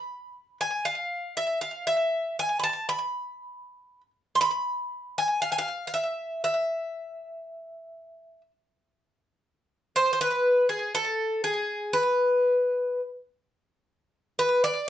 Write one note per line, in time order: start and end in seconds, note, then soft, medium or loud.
0.00 0.57 B5 medium
0.61 0.85 G#5 medium
0.85 1.34 F5 medium
1.37 1.61 E5 medium
1.61 1.87 F5 medium
1.87 2.36 E5 medium
2.39 2.58 G#5 medium
2.60 2.88 A5 medium
2.60 2.63 B5 medium
2.89 4.00 B5 medium
4.35 4.40 C6 medium
4.41 5.18 B5 medium
5.18 5.41 G#5 medium
5.42 5.51 F5 medium
5.52 5.58 G#5 medium
5.58 5.86 F5 medium
5.87 5.93 F5 medium
5.94 6.41 E5 medium
6.44 8.41 E5 medium
9.96 10.12 C5 loud
10.13 10.20 C5 medium
10.21 10.66 B4 medium
10.69 10.94 G#4 medium
10.95 11.43 A4 medium
11.44 11.94 G#4 medium
11.93 13.00 B4 medium
14.39 14.63 B4 medium
14.64 14.86 D5 loud